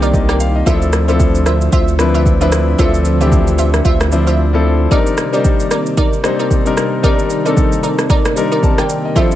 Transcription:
Already playing: sub bass C2, analog synth pad C3 D#3 A#3 D5, grand piano D#3 A#3 C4 D4 F4 G4
0.02 synth pluck D#4 A#4 D5, shaker
0.14 grand piano D#5, kick, shaker
0.28 synth pluck D#4 A#4 D5, grand piano G5, cross-stick, shaker
0.40 grand piano F5, shaker
0.56 grand piano D#5
0.66 sub bass D2, analog synth pad D3 F3 C4 E5, grand piano F3 C4 D4 E4 A4, synth pluck F4 C5 E5, kick, shaker
0.82 shaker
0.93 cross-stick, shaker
1.08 grand piano F3 C4 D4 E4 A4, synth pluck F4 C5 E5, shaker
1.20 kick, shaker
1.35 shaker
1.46 synth pluck F4 C5 E5, cross-stick, shaker
1.61 shaker
1.72 sub bass D2, synth pluck F4 C5 E5, kick, shaker
1.88 shaker
1.99 grand piano F3 C4 D4 E4 B4, cross-stick, shaker
2.14 synth pluck F4 C5 E5, shaker
2.26 kick, shaker
2.41 grand piano F3 C4 D4 E4 B4, synth pluck F4 C5 E5, shaker
2.52 cross-stick, shaker
2.78 sub bass D2, grand piano F3 C4 D4 E4 A4, synth pluck F4 C5 E5, kick, shaker
2.94 shaker
3.05 shaker
3.20 grand piano E3 C4 D4 E4 G4, synth pluck F4 C5 E5, shaker
3.27 grand piano F3
3.32 kick, shaker
3.47 shaker
3.58 synth pluck F4 C5 E5, shaker
3.74 cross-stick, shaker
3.85 sub bass D2, synth pluck F4 C5 E5, kick, shaker
4.00 cross-stick, shaker
4.11 grand piano F3 C4 D4 E4 C5, shaker
4.27 synth pluck F4 C5 E5, shaker
4.53 grand piano F3 C4 D4 E4 A4
4.91 analog synth pad C3 D#3 A#3 D5, grand piano G3 C4 D4 D#4 A#4, synth pluck D#4 A#4 D5, kick, shaker
5.07 shaker
5.17 cross-stick, shaker
5.32 grand piano G3 C4 D4 D#4 C5, synth pluck D#4 A#4 D5, shaker
5.45 kick, shaker
5.60 shaker
5.71 synth pluck D#4 A#4 D5, cross-stick, shaker
5.86 shaker
5.97 synth pluck D#4 A#4 D5, kick, shaker
6.13 shaker
6.23 grand piano G3 C4 D4 D#4 C5, cross-stick, shaker
6.39 synth pluck D#4 A#4 D5, shaker
6.51 kick, shaker
6.65 grand piano G3 C4 D4 D#4 A#4, shaker
6.77 cross-stick, shaker
7.03 grand piano G3 C4 D4 D#4 A#4, analog synth pad G3, synth pluck D#4 A#4 D5, kick, shaker
7.19 shaker
7.30 shaker
7.45 grand piano G3 C4 D4 D#4 A4, synth pluck D#4 A#4 D5, shaker
7.57 kick, shaker
7.72 shaker
7.83 synth pluck D#4 A#4 D5, shaker
7.99 cross-stick, shaker
8.10 synth pluck D#4 A#4 D5, kick, shaker
8.25 cross-stick, shaker
8.36 grand piano G3 C4 D4 D#4 A#4, shaker
8.52 synth pluck D#4 A#4 D5, shaker
8.63 grand piano A5, kick, shaker
8.78 synth pluck D#4 A#4 D5, grand piano G5, cross-stick, shaker
8.89 shaker
9.05 grand piano D#5
9.15 analog synth pad D3 F3 E5, grand piano F3 C4 D4 E4 A4, synth pluck F4 C5 E5, kick, shaker
9.31 shaker

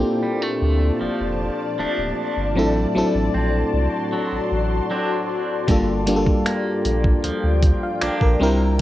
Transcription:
Already playing: clean electric guitar A#2 A#3, fm electric piano A#3 C4 D4 F4 G4 A4, ambient pad F4 D5 A5
0.23 clean electric guitar G3
0.42 clean electric guitar A3
0.62 sub bass D2
1.01 sub bass F1, clean electric guitar F3
1.20 sub bass F1
1.79 sub bass D1, clean electric guitar F3 A3 D4
1.98 sub bass D1
2.37 sub bass G1
2.55 sub bass A1, clean electric guitar A2, fm electric piano F#3 C4 D4 E4 A4, ambient pad F#4 C6
2.95 sub bass A1, fm electric piano F#3 C4 D4 E4 A4
3.15 sub bass A1
3.34 sub bass A#1, clean electric guitar C4
3.73 sub bass C2
4.12 clean electric guitar F#3
4.32 sub bass A1
4.51 sub bass A1
4.90 clean electric guitar F#3 C4 D4
5.67 sub bass G1, clean electric guitar G2, fm electric piano G3 A#3 D4 F4 A4, ambient pad F4 G5, kick, closed hi-hat
6.06 fm electric piano G3 A#3 D4 F4 G4, closed hi-hat
6.16 fm electric piano A4
6.26 kick
6.46 clean electric guitar A#3, finger snap, closed hi-hat
6.85 sub bass A#1, closed hi-hat
7.04 kick
7.24 sub bass D2, clean electric guitar F3, closed hi-hat
7.43 sub bass D2
7.63 kick, closed hi-hat
7.83 fm electric piano F5
8.01 sub bass A#1, clean electric guitar F3 A#3 D4, fm electric piano D5, finger snap, closed hi-hat
8.21 sub bass A#1, fm electric piano A#4, kick
8.40 sub bass C2, clean electric guitar C3, fm electric piano G3 C4 D4 E4 A#4, ambient pad E4 C5

